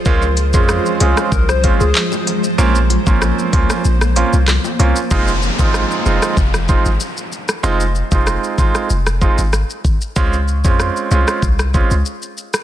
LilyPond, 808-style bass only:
\new Staff \with { instrumentName = "808-style bass" } { \clef bass \time 4/4 \key f \minor \tempo 4 = 95 des,8. f,8 r16 c,16 r16 c,8. des,16 r4 | bes,,8. bes,,8 r16 des,16 r16 bes,,8. c,8 r16 c,16 r16 | f,,8. aes,,8 r16 f,,16 r16 f,,8. aes,,16 r4 | f,,8. f,,8 r16 aes,,16 r16 f,,8. aes,,8 r16 aes,,16 r16 |
des,8. f,8 r16 c,16 r16 c,8. des,16 r4 | }